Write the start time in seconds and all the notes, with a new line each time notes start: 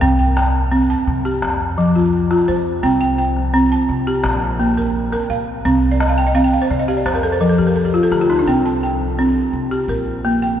Already playing: F5
0.01 C2 C4 G5, calabash thump, calabash click
0.19 G5
0.37 G5, calabash click
0.55 calabash click
0.72 C4
0.90 A5
1.07 C3, calabash thump
1.25 G4, calabash click
1.42 F2, calabash click
1.78 F3
1.95 F4, calabash thump
2.31 F4, calabash click
2.48 F2 C5
2.83 C2 C4 G5, calabash thump, calabash click
3.01 G5
3.18 G5
3.37 calabash click
3.54 C4
3.72 A5
3.89 C3, calabash thump
4.07 G4, calabash click
4.24 A#1, calabash click
4.60 A#3
4.77 A#4, calabash thump
5.12 A#4, calabash click
5.30 A#1 F5
5.65 C2 C4, calabash thump, calabash click
5.91 D5
6.00 D#5, calabash click
6.09 F5
6.18 G5
6.27 D#5
6.35 C4 F5, calabash click
6.44 G5
6.53 F5
6.62 C5
6.70 C3 D5, calabash thump, calabash click
6.79 D#5
6.88 G4 F5
6.97 D5
7.06 F2 C5, calabash click
7.15 A#4
7.23 A4, calabash click
7.32 C5
7.41 F3 A#4
7.49 A4
7.58 G4, calabash thump, calabash click
7.67 A#4
7.76 A4
7.85 G4
7.94 F4, calabash thump
8.03 A4
8.12 D2 G4, calabash click
8.21 F4
8.30 D#4, calabash click
8.39 D4
8.46 C2 C4 G5
8.66 A5
8.83 G5
9.19 C4
9.53 C3
9.71 G4
9.88 A#1 A#4
10.25 A#3
10.42 G5